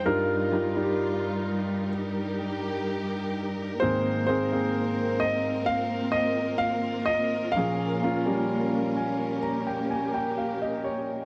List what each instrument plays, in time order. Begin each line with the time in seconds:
Already playing: string section D#4
0.05 grand piano G2 G3 D#4 F4 A#4, string section G3 F4 A#4
0.52 grand piano G3 D#4 F4
0.75 grand piano G3 D#4 F4
0.83 grand piano G4
1.94 string section G4
3.80 grand piano G#2 D#3 A#3 C4 G#4 C5, string section A#3 C4
4.27 grand piano A#3 C4 G#4 C5
4.52 grand piano A#3 C4 G#4
5.20 grand piano D#5
5.66 string section F4, grand piano F5
6.12 grand piano D#5
6.58 grand piano F5
7.06 grand piano D#5
7.52 grand piano F5
7.56 grand piano A#2 F3 A#3 C#4 G#4, string section C#4
8.03 grand piano A#3 C#4 F4
8.26 grand piano G3 A#3 C#4
8.97 grand piano G#5
9.43 string section G4, grand piano A#5
9.67 grand piano G5
9.91 grand piano G#5
10.14 grand piano G5
10.38 grand piano F5
10.62 grand piano D#5
10.84 grand piano C#5